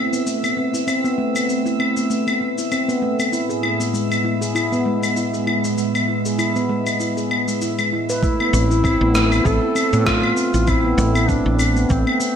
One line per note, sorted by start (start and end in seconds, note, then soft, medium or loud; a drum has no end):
0.00 3.33 A3 medium
0.00 0.12 C4 medium
0.00 8.22 E4 medium
0.00 8.23 B4 medium
0.00 8.22 E5 medium
0.00 8.24 E5 medium
0.13 0.26 B3 medium
0.13 shaker medium
0.27 0.43 A3 medium
0.27 shaker medium
0.43 0.51 B3 medium
0.43 claves medium
0.43 shaker soft
0.57 0.72 C4 medium
0.74 0.82 E4 medium
0.74 shaker medium
0.87 1.04 C4 medium
0.87 claves medium
0.87 shaker soft
1.04 1.18 B3 medium
1.04 shaker soft
1.18 1.28 A3 medium
1.35 1.48 B3 medium
1.35 claves medium
1.35 shaker medium
1.48 1.64 C4 medium
1.48 shaker soft
1.66 1.78 E4 medium
1.66 shaker soft
1.79 1.96 C4 medium
1.79 claves medium
1.97 2.10 B3 medium
1.97 shaker medium
2.10 2.26 A3 medium
2.10 shaker soft
2.27 2.35 B3 medium
2.27 claves medium
2.27 shaker soft
2.41 2.56 C4 medium
2.58 2.66 E4 medium
2.58 shaker medium
2.72 2.88 C4 medium
2.72 claves medium
2.72 shaker soft
2.89 3.02 B3 medium
2.89 shaker soft
3.02 3.12 A3 medium
3.19 3.31 B3 medium
3.19 claves medium
3.19 shaker medium
3.32 8.23 A2 medium
3.32 3.48 E4 medium
3.32 shaker soft
3.48 8.23 G#3 medium
3.48 3.62 G#4 medium
3.48 shaker soft
3.63 3.80 E4 medium
3.63 claves medium
3.79 8.23 B3 medium
3.79 3.93 B3 medium
3.79 shaker medium
3.93 4.10 G#3 medium
3.93 shaker soft
4.11 4.19 B3 medium
4.11 claves medium
4.11 shaker soft
4.24 4.40 E4 medium
4.41 4.49 G#4 medium
4.41 shaker medium
4.55 4.71 E4 loud
4.55 claves medium
4.55 shaker soft
4.72 4.85 B3 medium
4.72 shaker soft
4.86 4.96 G#3 medium
5.03 5.15 B3 medium
5.03 claves medium
5.03 shaker medium
5.16 5.32 E4 medium
5.16 shaker medium
5.34 5.46 G#4 medium
5.34 shaker soft
5.47 5.63 E4 medium
5.47 claves medium
5.64 5.77 B3 medium
5.64 shaker medium
5.78 5.94 G#3 medium
5.78 shaker soft
5.94 6.02 B3 medium
5.94 claves medium
5.94 shaker soft
6.08 6.24 E4 medium
6.26 6.33 G#4 medium
6.26 shaker medium
6.39 6.55 E4 medium
6.39 claves medium
6.39 shaker soft
6.56 6.69 B3 medium
6.56 shaker soft
6.69 6.79 G#3 medium
6.87 6.99 B3 medium
6.87 claves medium
6.87 shaker medium
7.00 7.16 E4 medium
7.00 shaker soft
7.17 7.29 G#4 medium
7.17 shaker soft
7.31 7.47 B3 medium
7.31 claves medium
7.48 7.60 G#3 medium
7.48 shaker medium
7.62 7.78 E4 medium
7.62 shaker soft
7.79 7.86 G#3 medium
7.79 claves medium
7.79 shaker soft
7.93 8.09 E4 medium
8.10 8.17 B4 medium
8.10 shaker medium
8.23 8.39 A3 medium
8.23 9.47 E4 loud
8.23 kick loud
8.23 shaker soft
8.40 8.48 B3 medium
8.40 claves medium
8.53 8.95 A1 loud
8.53 8.69 C4 medium
8.53 shaker medium
8.71 8.78 E4 medium
8.71 shaker soft
8.84 9.00 C4 loud
8.84 kick loud
8.84 claves medium
8.84 shaker soft
9.01 9.40 A1 loud
9.01 9.14 B3 medium
9.14 9.24 A3 loud
9.14 cross-stick medium
9.14 shaker medium
9.31 9.44 B3 medium
9.31 claves medium
9.31 shaker soft
9.45 9.58 A1 medium
9.45 9.60 C4 medium
9.45 10.08 A4 loud
9.45 kick loud
9.45 shaker soft
9.62 9.74 E4 medium
9.75 9.92 C4 medium
9.75 claves medium
9.75 shaker medium
9.93 10.32 A2 medium
9.93 10.06 B3 medium
9.93 shaker soft
10.06 10.22 A3 medium
10.06 10.70 F4 loud
10.06 kick loud
10.06 cross-stick medium
10.06 shaker soft
10.23 10.31 B3 medium
10.23 claves medium
10.37 10.52 C4 medium
10.37 shaker medium
10.54 10.93 A1 medium
10.54 10.62 E4 medium
10.54 shaker soft
10.67 10.84 C4 loud
10.67 11.31 E4 loud
10.67 kick loud
10.67 claves medium
10.67 shaker soft
10.84 10.97 B3 medium
10.98 11.39 A1 loud
10.98 11.08 A3 loud
10.98 shaker medium
11.15 11.27 B3 medium
11.15 claves medium
11.15 shaker soft
11.29 11.44 C4 medium
11.29 11.92 D4 medium
11.29 kick loud
11.29 shaker soft
11.45 11.85 A1 loud
11.45 11.58 E4 medium
11.59 11.75 C4 medium
11.59 claves medium
11.59 shaker medium
11.76 11.89 B3 medium
11.76 shaker soft
11.89 12.03 A1 loud
11.89 12.06 A3 medium
11.89 12.36 C4 medium
11.89 kick loud
11.89 shaker soft
12.06 12.15 B3 medium
12.06 claves medium
12.20 12.36 C4 medium
12.20 shaker medium